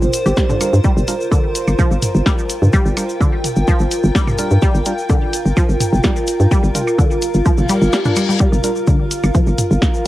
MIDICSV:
0, 0, Header, 1, 8, 480
1, 0, Start_track
1, 0, Key_signature, -2, "minor"
1, 0, Tempo, 472441
1, 856, Time_signature, 4, 2, 24, 8
1, 10234, End_track
2, 0, Start_track
2, 0, Title_t, "Ambient pad"
2, 0, Program_c, 0, 92
2, 0, Note_on_c, 0, 65, 81
2, 0, Note_on_c, 0, 70, 85
2, 0, Note_on_c, 0, 72, 91
2, 1729, Note_on_c, 0, 79, 94
2, 1753, Note_off_c, 0, 72, 0
2, 5573, Note_on_c, 0, 77, 90
2, 5593, Note_off_c, 0, 79, 0
2, 9408, Note_on_c, 0, 79, 92
2, 9434, Note_off_c, 0, 77, 0
2, 10234, Note_off_c, 0, 65, 0
2, 10234, Note_off_c, 0, 70, 0
2, 10234, Note_off_c, 0, 79, 0
2, 10234, End_track
3, 0, Start_track
3, 0, Title_t, "Synth stab"
3, 0, Program_c, 1, 62
3, 616, Note_on_c, 1, 55, 92
3, 617, Note_on_c, 1, 62, 85
3, 617, Note_on_c, 1, 65, 85
3, 617, Note_on_c, 1, 70, 101
3, 730, Note_off_c, 1, 55, 0
3, 730, Note_off_c, 1, 62, 0
3, 730, Note_off_c, 1, 65, 0
3, 730, Note_off_c, 1, 70, 0
3, 1096, Note_on_c, 1, 55, 87
3, 1096, Note_on_c, 1, 62, 81
3, 1096, Note_on_c, 1, 65, 81
3, 1096, Note_on_c, 1, 70, 100
3, 1167, Note_off_c, 1, 55, 0
3, 1167, Note_off_c, 1, 65, 0
3, 1167, Note_off_c, 1, 70, 0
3, 1168, Note_off_c, 1, 62, 0
3, 3016, Note_on_c, 1, 55, 74
3, 3016, Note_on_c, 1, 62, 69
3, 3016, Note_on_c, 1, 65, 69
3, 3016, Note_on_c, 1, 70, 86
3, 3087, Note_off_c, 1, 55, 0
3, 3087, Note_off_c, 1, 62, 0
3, 3087, Note_off_c, 1, 65, 0
3, 3087, Note_off_c, 1, 70, 0
3, 4456, Note_on_c, 1, 55, 89
3, 4456, Note_on_c, 1, 62, 84
3, 4456, Note_on_c, 1, 65, 86
3, 4456, Note_on_c, 1, 70, 99
3, 4570, Note_off_c, 1, 55, 0
3, 4570, Note_off_c, 1, 62, 0
3, 4570, Note_off_c, 1, 65, 0
3, 4570, Note_off_c, 1, 70, 0
3, 4937, Note_on_c, 1, 55, 87
3, 4937, Note_on_c, 1, 62, 82
3, 4937, Note_on_c, 1, 65, 82
3, 4937, Note_on_c, 1, 70, 99
3, 5008, Note_off_c, 1, 55, 0
3, 5008, Note_off_c, 1, 62, 0
3, 5008, Note_off_c, 1, 65, 0
3, 5008, Note_off_c, 1, 70, 0
3, 6856, Note_on_c, 1, 55, 73
3, 6856, Note_on_c, 1, 70, 83
3, 6857, Note_on_c, 1, 62, 70
3, 6857, Note_on_c, 1, 65, 69
3, 6927, Note_off_c, 1, 55, 0
3, 6927, Note_off_c, 1, 70, 0
3, 6928, Note_off_c, 1, 62, 0
3, 6928, Note_off_c, 1, 65, 0
3, 8775, Note_on_c, 1, 62, 81
3, 8776, Note_on_c, 1, 55, 89
3, 8776, Note_on_c, 1, 65, 83
3, 8776, Note_on_c, 1, 70, 96
3, 8847, Note_off_c, 1, 55, 0
3, 8847, Note_off_c, 1, 62, 0
3, 8847, Note_off_c, 1, 65, 0
3, 8847, Note_off_c, 1, 70, 0
3, 10234, End_track
4, 0, Start_track
4, 0, Title_t, "Synth arpeggio sound"
4, 0, Program_c, 2, 84
4, 262, Note_on_c, 2, 67, 75
4, 319, Note_off_c, 2, 67, 0
4, 376, Note_on_c, 2, 55, 83
4, 439, Note_off_c, 2, 55, 0
4, 504, Note_on_c, 2, 50, 75
4, 559, Note_off_c, 2, 50, 0
4, 856, Note_on_c, 2, 55, 101
4, 950, Note_off_c, 2, 55, 0
4, 1336, Note_on_c, 2, 50, 83
4, 1430, Note_off_c, 2, 50, 0
4, 1816, Note_on_c, 2, 53, 98
4, 1910, Note_off_c, 2, 53, 0
4, 2296, Note_on_c, 2, 55, 79
4, 2334, Note_off_c, 2, 55, 0
4, 2776, Note_on_c, 2, 55, 103
4, 2870, Note_off_c, 2, 55, 0
4, 3257, Note_on_c, 2, 50, 81
4, 3351, Note_off_c, 2, 50, 0
4, 3736, Note_on_c, 2, 53, 102
4, 3830, Note_off_c, 2, 53, 0
4, 4216, Note_on_c, 2, 55, 79
4, 4254, Note_off_c, 2, 55, 0
4, 4696, Note_on_c, 2, 55, 101
4, 4790, Note_off_c, 2, 55, 0
4, 5176, Note_on_c, 2, 50, 82
4, 5270, Note_off_c, 2, 50, 0
4, 5656, Note_on_c, 2, 53, 101
4, 5750, Note_off_c, 2, 53, 0
4, 6134, Note_on_c, 2, 55, 80
4, 6173, Note_off_c, 2, 55, 0
4, 6616, Note_on_c, 2, 55, 98
4, 6710, Note_off_c, 2, 55, 0
4, 7096, Note_on_c, 2, 50, 84
4, 7190, Note_off_c, 2, 50, 0
4, 7576, Note_on_c, 2, 53, 99
4, 7670, Note_off_c, 2, 53, 0
4, 7817, Note_on_c, 2, 55, 104
4, 7879, Note_off_c, 2, 55, 0
4, 8057, Note_on_c, 2, 55, 82
4, 8119, Note_off_c, 2, 55, 0
4, 8184, Note_on_c, 2, 62, 77
4, 8267, Note_off_c, 2, 62, 0
4, 8296, Note_on_c, 2, 55, 79
4, 8334, Note_off_c, 2, 55, 0
4, 8424, Note_on_c, 2, 55, 77
4, 8480, Note_off_c, 2, 55, 0
4, 8536, Note_on_c, 2, 55, 101
4, 8630, Note_off_c, 2, 55, 0
4, 9017, Note_on_c, 2, 50, 82
4, 9110, Note_off_c, 2, 50, 0
4, 9497, Note_on_c, 2, 53, 99
4, 9590, Note_off_c, 2, 53, 0
4, 10234, End_track
5, 0, Start_track
5, 0, Title_t, "FM bass"
5, 0, Program_c, 3, 39
5, 23, Note_on_c, 3, 31, 97
5, 94, Note_off_c, 3, 31, 0
5, 263, Note_on_c, 3, 31, 103
5, 334, Note_off_c, 3, 31, 0
5, 743, Note_on_c, 3, 43, 88
5, 814, Note_off_c, 3, 43, 0
5, 983, Note_on_c, 3, 31, 99
5, 1054, Note_off_c, 3, 31, 0
5, 1703, Note_on_c, 3, 31, 86
5, 1774, Note_off_c, 3, 31, 0
5, 1943, Note_on_c, 3, 31, 95
5, 2014, Note_off_c, 3, 31, 0
5, 2183, Note_on_c, 3, 31, 104
5, 2254, Note_off_c, 3, 31, 0
5, 2663, Note_on_c, 3, 43, 86
5, 2734, Note_off_c, 3, 43, 0
5, 2903, Note_on_c, 3, 31, 97
5, 2974, Note_off_c, 3, 31, 0
5, 3623, Note_on_c, 3, 31, 90
5, 3694, Note_off_c, 3, 31, 0
5, 3862, Note_on_c, 3, 31, 95
5, 3934, Note_off_c, 3, 31, 0
5, 4102, Note_on_c, 3, 31, 102
5, 4173, Note_off_c, 3, 31, 0
5, 4584, Note_on_c, 3, 43, 86
5, 4654, Note_off_c, 3, 43, 0
5, 4823, Note_on_c, 3, 31, 97
5, 4894, Note_off_c, 3, 31, 0
5, 5543, Note_on_c, 3, 31, 89
5, 5614, Note_off_c, 3, 31, 0
5, 5783, Note_on_c, 3, 31, 93
5, 5854, Note_off_c, 3, 31, 0
5, 6022, Note_on_c, 3, 31, 102
5, 6093, Note_off_c, 3, 31, 0
5, 6502, Note_on_c, 3, 43, 87
5, 6573, Note_off_c, 3, 43, 0
5, 6743, Note_on_c, 3, 31, 98
5, 6814, Note_off_c, 3, 31, 0
5, 7464, Note_on_c, 3, 31, 87
5, 7534, Note_off_c, 3, 31, 0
5, 7703, Note_on_c, 3, 31, 96
5, 7774, Note_off_c, 3, 31, 0
5, 7943, Note_on_c, 3, 31, 103
5, 8014, Note_off_c, 3, 31, 0
5, 8663, Note_on_c, 3, 31, 97
5, 8734, Note_off_c, 3, 31, 0
5, 9385, Note_on_c, 3, 31, 88
5, 9455, Note_off_c, 3, 31, 0
5, 9624, Note_on_c, 3, 31, 97
5, 9694, Note_off_c, 3, 31, 0
5, 9865, Note_on_c, 3, 31, 105
5, 9935, Note_off_c, 3, 31, 0
5, 10234, End_track
6, 0, Start_track
6, 0, Title_t, "Reverse cymbal"
6, 0, Program_c, 4, 119
6, 7577, Note_on_c, 4, 60, 62
6, 8537, Note_off_c, 4, 60, 0
6, 10234, End_track
7, 0, Start_track
7, 0, Title_t, "Percussion blips"
7, 617, Note_on_c, 9, 76, 64
7, 719, Note_off_c, 9, 76, 0
7, 1703, Note_on_c, 9, 76, 64
7, 1804, Note_off_c, 9, 76, 0
7, 3016, Note_on_c, 9, 76, 64
7, 3118, Note_off_c, 9, 76, 0
7, 4343, Note_on_c, 9, 76, 63
7, 4444, Note_off_c, 9, 76, 0
7, 5657, Note_on_c, 9, 76, 66
7, 5759, Note_off_c, 9, 76, 0
7, 6983, Note_on_c, 9, 76, 72
7, 7084, Note_off_c, 9, 76, 0
7, 8298, Note_on_c, 9, 76, 70
7, 8400, Note_off_c, 9, 76, 0
7, 9384, Note_on_c, 9, 76, 71
7, 9486, Note_off_c, 9, 76, 0
7, 10234, End_track
8, 0, Start_track
8, 0, Title_t, "Drums"
8, 20, Note_on_c, 9, 82, 41
8, 24, Note_on_c, 9, 48, 48
8, 122, Note_off_c, 9, 82, 0
8, 125, Note_off_c, 9, 48, 0
8, 133, Note_on_c, 9, 82, 97
8, 137, Note_on_c, 9, 42, 99
8, 235, Note_off_c, 9, 82, 0
8, 239, Note_off_c, 9, 42, 0
8, 264, Note_on_c, 9, 82, 41
8, 365, Note_off_c, 9, 82, 0
8, 373, Note_on_c, 9, 82, 57
8, 377, Note_on_c, 9, 36, 121
8, 377, Note_on_c, 9, 38, 100
8, 475, Note_off_c, 9, 82, 0
8, 479, Note_off_c, 9, 36, 0
8, 479, Note_off_c, 9, 38, 0
8, 503, Note_on_c, 9, 45, 89
8, 504, Note_on_c, 9, 82, 35
8, 605, Note_off_c, 9, 45, 0
8, 606, Note_off_c, 9, 82, 0
8, 617, Note_on_c, 9, 42, 95
8, 618, Note_on_c, 9, 82, 95
8, 719, Note_off_c, 9, 42, 0
8, 720, Note_off_c, 9, 82, 0
8, 745, Note_on_c, 9, 82, 39
8, 847, Note_off_c, 9, 82, 0
8, 851, Note_on_c, 9, 82, 56
8, 857, Note_on_c, 9, 36, 122
8, 953, Note_off_c, 9, 82, 0
8, 958, Note_off_c, 9, 36, 0
8, 983, Note_on_c, 9, 48, 42
8, 991, Note_on_c, 9, 82, 41
8, 1084, Note_off_c, 9, 48, 0
8, 1093, Note_off_c, 9, 82, 0
8, 1095, Note_on_c, 9, 82, 97
8, 1096, Note_on_c, 9, 42, 92
8, 1196, Note_off_c, 9, 82, 0
8, 1198, Note_off_c, 9, 42, 0
8, 1226, Note_on_c, 9, 82, 40
8, 1328, Note_off_c, 9, 82, 0
8, 1337, Note_on_c, 9, 36, 118
8, 1341, Note_on_c, 9, 82, 56
8, 1438, Note_off_c, 9, 36, 0
8, 1443, Note_off_c, 9, 82, 0
8, 1576, Note_on_c, 9, 42, 92
8, 1578, Note_on_c, 9, 82, 88
8, 1678, Note_off_c, 9, 42, 0
8, 1680, Note_off_c, 9, 82, 0
8, 1703, Note_on_c, 9, 82, 41
8, 1805, Note_off_c, 9, 82, 0
8, 1816, Note_on_c, 9, 82, 51
8, 1817, Note_on_c, 9, 36, 121
8, 1817, Note_on_c, 9, 48, 44
8, 1918, Note_off_c, 9, 48, 0
8, 1918, Note_off_c, 9, 82, 0
8, 1919, Note_off_c, 9, 36, 0
8, 1945, Note_on_c, 9, 82, 33
8, 2046, Note_off_c, 9, 82, 0
8, 2055, Note_on_c, 9, 82, 92
8, 2056, Note_on_c, 9, 42, 94
8, 2057, Note_on_c, 9, 45, 77
8, 2157, Note_off_c, 9, 82, 0
8, 2158, Note_off_c, 9, 42, 0
8, 2158, Note_off_c, 9, 45, 0
8, 2182, Note_on_c, 9, 82, 38
8, 2283, Note_off_c, 9, 82, 0
8, 2296, Note_on_c, 9, 38, 101
8, 2297, Note_on_c, 9, 36, 117
8, 2301, Note_on_c, 9, 82, 50
8, 2397, Note_off_c, 9, 38, 0
8, 2398, Note_off_c, 9, 36, 0
8, 2403, Note_off_c, 9, 82, 0
8, 2424, Note_on_c, 9, 82, 38
8, 2526, Note_off_c, 9, 82, 0
8, 2536, Note_on_c, 9, 42, 91
8, 2536, Note_on_c, 9, 82, 98
8, 2637, Note_off_c, 9, 42, 0
8, 2637, Note_off_c, 9, 82, 0
8, 2663, Note_on_c, 9, 48, 46
8, 2672, Note_on_c, 9, 82, 37
8, 2765, Note_off_c, 9, 48, 0
8, 2773, Note_off_c, 9, 82, 0
8, 2773, Note_on_c, 9, 82, 50
8, 2777, Note_on_c, 9, 36, 120
8, 2874, Note_off_c, 9, 82, 0
8, 2879, Note_off_c, 9, 36, 0
8, 2905, Note_on_c, 9, 82, 34
8, 3006, Note_off_c, 9, 82, 0
8, 3016, Note_on_c, 9, 42, 91
8, 3021, Note_on_c, 9, 82, 92
8, 3118, Note_off_c, 9, 42, 0
8, 3123, Note_off_c, 9, 82, 0
8, 3141, Note_on_c, 9, 82, 38
8, 3243, Note_off_c, 9, 82, 0
8, 3257, Note_on_c, 9, 36, 112
8, 3264, Note_on_c, 9, 82, 51
8, 3359, Note_off_c, 9, 36, 0
8, 3366, Note_off_c, 9, 82, 0
8, 3496, Note_on_c, 9, 48, 42
8, 3497, Note_on_c, 9, 42, 88
8, 3505, Note_on_c, 9, 82, 88
8, 3598, Note_off_c, 9, 42, 0
8, 3598, Note_off_c, 9, 48, 0
8, 3607, Note_off_c, 9, 82, 0
8, 3619, Note_on_c, 9, 82, 38
8, 3720, Note_off_c, 9, 82, 0
8, 3734, Note_on_c, 9, 82, 53
8, 3737, Note_on_c, 9, 36, 113
8, 3835, Note_off_c, 9, 82, 0
8, 3839, Note_off_c, 9, 36, 0
8, 3854, Note_on_c, 9, 82, 37
8, 3956, Note_off_c, 9, 82, 0
8, 3975, Note_on_c, 9, 82, 83
8, 3977, Note_on_c, 9, 42, 92
8, 4077, Note_off_c, 9, 82, 0
8, 4078, Note_off_c, 9, 42, 0
8, 4099, Note_on_c, 9, 82, 40
8, 4200, Note_off_c, 9, 82, 0
8, 4216, Note_on_c, 9, 38, 98
8, 4217, Note_on_c, 9, 36, 113
8, 4221, Note_on_c, 9, 82, 55
8, 4318, Note_off_c, 9, 38, 0
8, 4319, Note_off_c, 9, 36, 0
8, 4323, Note_off_c, 9, 82, 0
8, 4343, Note_on_c, 9, 45, 88
8, 4343, Note_on_c, 9, 48, 43
8, 4345, Note_on_c, 9, 82, 36
8, 4444, Note_off_c, 9, 45, 0
8, 4444, Note_off_c, 9, 48, 0
8, 4446, Note_off_c, 9, 82, 0
8, 4452, Note_on_c, 9, 82, 96
8, 4456, Note_on_c, 9, 42, 87
8, 4553, Note_off_c, 9, 82, 0
8, 4557, Note_off_c, 9, 42, 0
8, 4578, Note_on_c, 9, 82, 36
8, 4679, Note_off_c, 9, 82, 0
8, 4692, Note_on_c, 9, 82, 52
8, 4697, Note_on_c, 9, 36, 118
8, 4794, Note_off_c, 9, 82, 0
8, 4799, Note_off_c, 9, 36, 0
8, 4824, Note_on_c, 9, 82, 35
8, 4926, Note_off_c, 9, 82, 0
8, 4932, Note_on_c, 9, 82, 82
8, 4936, Note_on_c, 9, 42, 89
8, 5034, Note_off_c, 9, 82, 0
8, 5038, Note_off_c, 9, 42, 0
8, 5062, Note_on_c, 9, 82, 35
8, 5164, Note_off_c, 9, 82, 0
8, 5173, Note_on_c, 9, 82, 53
8, 5176, Note_on_c, 9, 48, 42
8, 5177, Note_on_c, 9, 36, 114
8, 5275, Note_off_c, 9, 82, 0
8, 5278, Note_off_c, 9, 48, 0
8, 5279, Note_off_c, 9, 36, 0
8, 5418, Note_on_c, 9, 42, 87
8, 5419, Note_on_c, 9, 82, 80
8, 5519, Note_off_c, 9, 42, 0
8, 5521, Note_off_c, 9, 82, 0
8, 5546, Note_on_c, 9, 82, 37
8, 5648, Note_off_c, 9, 82, 0
8, 5656, Note_on_c, 9, 82, 48
8, 5657, Note_on_c, 9, 36, 112
8, 5758, Note_off_c, 9, 82, 0
8, 5759, Note_off_c, 9, 36, 0
8, 5784, Note_on_c, 9, 82, 34
8, 5886, Note_off_c, 9, 82, 0
8, 5896, Note_on_c, 9, 45, 79
8, 5897, Note_on_c, 9, 42, 89
8, 5899, Note_on_c, 9, 82, 91
8, 5998, Note_off_c, 9, 45, 0
8, 5999, Note_off_c, 9, 42, 0
8, 6001, Note_off_c, 9, 82, 0
8, 6023, Note_on_c, 9, 48, 44
8, 6030, Note_on_c, 9, 82, 36
8, 6124, Note_off_c, 9, 48, 0
8, 6130, Note_off_c, 9, 82, 0
8, 6130, Note_on_c, 9, 82, 49
8, 6137, Note_on_c, 9, 36, 111
8, 6137, Note_on_c, 9, 38, 101
8, 6232, Note_off_c, 9, 82, 0
8, 6239, Note_off_c, 9, 36, 0
8, 6239, Note_off_c, 9, 38, 0
8, 6260, Note_on_c, 9, 82, 37
8, 6362, Note_off_c, 9, 82, 0
8, 6370, Note_on_c, 9, 82, 88
8, 6377, Note_on_c, 9, 42, 87
8, 6472, Note_off_c, 9, 82, 0
8, 6479, Note_off_c, 9, 42, 0
8, 6501, Note_on_c, 9, 82, 34
8, 6603, Note_off_c, 9, 82, 0
8, 6617, Note_on_c, 9, 36, 118
8, 6617, Note_on_c, 9, 82, 54
8, 6719, Note_off_c, 9, 36, 0
8, 6719, Note_off_c, 9, 82, 0
8, 6743, Note_on_c, 9, 82, 34
8, 6845, Note_off_c, 9, 82, 0
8, 6857, Note_on_c, 9, 42, 87
8, 6857, Note_on_c, 9, 48, 44
8, 6859, Note_on_c, 9, 82, 87
8, 6958, Note_off_c, 9, 42, 0
8, 6958, Note_off_c, 9, 48, 0
8, 6961, Note_off_c, 9, 82, 0
8, 6987, Note_on_c, 9, 82, 41
8, 7089, Note_off_c, 9, 82, 0
8, 7097, Note_on_c, 9, 36, 117
8, 7101, Note_on_c, 9, 82, 51
8, 7199, Note_off_c, 9, 36, 0
8, 7203, Note_off_c, 9, 82, 0
8, 7223, Note_on_c, 9, 82, 33
8, 7325, Note_off_c, 9, 82, 0
8, 7333, Note_on_c, 9, 82, 86
8, 7337, Note_on_c, 9, 42, 87
8, 7435, Note_off_c, 9, 82, 0
8, 7439, Note_off_c, 9, 42, 0
8, 7457, Note_on_c, 9, 82, 37
8, 7559, Note_off_c, 9, 82, 0
8, 7574, Note_on_c, 9, 82, 52
8, 7577, Note_on_c, 9, 36, 119
8, 7676, Note_off_c, 9, 82, 0
8, 7679, Note_off_c, 9, 36, 0
8, 7698, Note_on_c, 9, 82, 35
8, 7703, Note_on_c, 9, 48, 44
8, 7799, Note_off_c, 9, 82, 0
8, 7805, Note_off_c, 9, 48, 0
8, 7812, Note_on_c, 9, 82, 92
8, 7817, Note_on_c, 9, 42, 90
8, 7914, Note_off_c, 9, 82, 0
8, 7919, Note_off_c, 9, 42, 0
8, 7943, Note_on_c, 9, 82, 39
8, 8044, Note_off_c, 9, 82, 0
8, 8052, Note_on_c, 9, 82, 52
8, 8057, Note_on_c, 9, 38, 104
8, 8154, Note_off_c, 9, 82, 0
8, 8159, Note_off_c, 9, 38, 0
8, 8180, Note_on_c, 9, 82, 35
8, 8184, Note_on_c, 9, 45, 93
8, 8281, Note_off_c, 9, 82, 0
8, 8286, Note_off_c, 9, 45, 0
8, 8289, Note_on_c, 9, 82, 82
8, 8297, Note_on_c, 9, 42, 88
8, 8391, Note_off_c, 9, 82, 0
8, 8399, Note_off_c, 9, 42, 0
8, 8432, Note_on_c, 9, 82, 41
8, 8533, Note_off_c, 9, 82, 0
8, 8533, Note_on_c, 9, 82, 49
8, 8537, Note_on_c, 9, 36, 124
8, 8635, Note_off_c, 9, 82, 0
8, 8638, Note_off_c, 9, 36, 0
8, 8665, Note_on_c, 9, 48, 44
8, 8668, Note_on_c, 9, 82, 40
8, 8767, Note_off_c, 9, 48, 0
8, 8769, Note_off_c, 9, 82, 0
8, 8775, Note_on_c, 9, 82, 96
8, 8776, Note_on_c, 9, 42, 92
8, 8877, Note_off_c, 9, 82, 0
8, 8878, Note_off_c, 9, 42, 0
8, 8895, Note_on_c, 9, 82, 38
8, 8996, Note_off_c, 9, 82, 0
8, 9012, Note_on_c, 9, 82, 49
8, 9017, Note_on_c, 9, 36, 122
8, 9114, Note_off_c, 9, 82, 0
8, 9118, Note_off_c, 9, 36, 0
8, 9256, Note_on_c, 9, 42, 91
8, 9257, Note_on_c, 9, 82, 96
8, 9358, Note_off_c, 9, 42, 0
8, 9358, Note_off_c, 9, 82, 0
8, 9383, Note_on_c, 9, 82, 37
8, 9485, Note_off_c, 9, 82, 0
8, 9495, Note_on_c, 9, 82, 55
8, 9497, Note_on_c, 9, 36, 122
8, 9498, Note_on_c, 9, 48, 44
8, 9596, Note_off_c, 9, 82, 0
8, 9598, Note_off_c, 9, 36, 0
8, 9599, Note_off_c, 9, 48, 0
8, 9619, Note_on_c, 9, 82, 33
8, 9721, Note_off_c, 9, 82, 0
8, 9736, Note_on_c, 9, 42, 95
8, 9738, Note_on_c, 9, 45, 84
8, 9738, Note_on_c, 9, 82, 98
8, 9838, Note_off_c, 9, 42, 0
8, 9839, Note_off_c, 9, 45, 0
8, 9839, Note_off_c, 9, 82, 0
8, 9867, Note_on_c, 9, 82, 39
8, 9969, Note_off_c, 9, 82, 0
8, 9976, Note_on_c, 9, 38, 109
8, 9977, Note_on_c, 9, 36, 118
8, 9979, Note_on_c, 9, 82, 55
8, 10078, Note_off_c, 9, 36, 0
8, 10078, Note_off_c, 9, 38, 0
8, 10081, Note_off_c, 9, 82, 0
8, 10102, Note_on_c, 9, 82, 39
8, 10203, Note_off_c, 9, 82, 0
8, 10234, End_track
0, 0, End_of_file